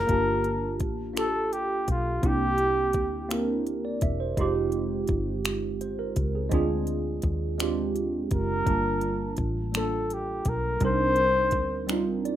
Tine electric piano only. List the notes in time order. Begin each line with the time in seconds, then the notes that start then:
Already playing: A#3 F4 G#4 A#4 C#5
0.07 A#3 D4 F4 G4
0.12 A5
1.13 A#3 D4 F4 G4
1.18 A4
2.21 A#3 C4 D4 E4
2.26 G4
3.29 A#3 C4 D4 E4 A#4
3.85 D5
4.02 E5
4.20 C5
4.37 G#3 C4 D#4 F4
4.41 G4
5.81 C5
5.99 A#4
6.35 G#4
6.49 G#3 C4 D4 F4
6.54 G#4
7.58 G#3 C4 D4 F4
7.63 G4
8.64 G3 A#3 D4 F4
8.69 A5
9.72 G3 A#3 D4 F4
9.77 A4
10.80 G3 C4 D4 D#4
10.85 A#4
11.87 G3 C4 D4 D#4
11.91 F4
12.25 D5